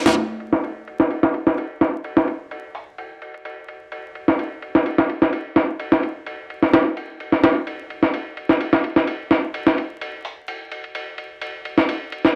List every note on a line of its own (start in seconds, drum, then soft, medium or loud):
0.06 snare loud
0.06 ride medium
0.06 high conga medium
0.17 ride medium
0.40 ride medium
0.53 snare soft
0.64 ride medium
0.88 ride medium
1.00 snare soft
1.11 ride medium
1.23 snare soft
1.34 ride medium
1.47 snare soft
1.58 ride medium
1.81 snare soft
1.81 ride medium
2.04 ride medium
2.17 snare soft
2.28 ride medium
2.51 ride medium
2.75 open hi-hat medium
2.98 ride medium
3.22 ride medium
3.34 ride soft
3.45 ride medium
3.69 ride medium
3.92 ride medium
4.15 ride medium
4.28 snare soft
4.39 ride medium
4.62 ride medium
4.75 snare soft
4.86 ride medium
4.98 snare soft
5.09 ride medium
5.22 snare soft
5.33 ride medium
5.56 snare soft
5.56 ride medium
5.80 ride medium
5.92 snare soft
6.03 ride medium
6.26 ride medium
6.50 ride medium
6.62 snare soft
6.73 snare medium
6.73 ride medium
6.97 ride medium
7.20 ride medium
7.32 snare soft
7.44 snare medium
7.44 ride medium
7.67 ride medium
7.90 ride medium
8.03 snare soft
8.14 ride medium
8.37 ride medium
8.49 snare soft
8.61 ride medium
8.73 snare soft
8.84 ride medium
8.96 snare soft
9.07 ride medium
9.31 snare soft
9.31 ride medium
9.54 ride medium
9.67 snare soft
9.78 ride medium
10.01 ride medium
10.25 open hi-hat medium
10.48 ride medium
10.72 ride medium
10.84 ride soft
10.95 ride medium
11.18 ride medium
11.42 ride medium
11.65 ride medium
11.78 snare soft
11.89 ride medium
12.12 ride medium
12.25 snare soft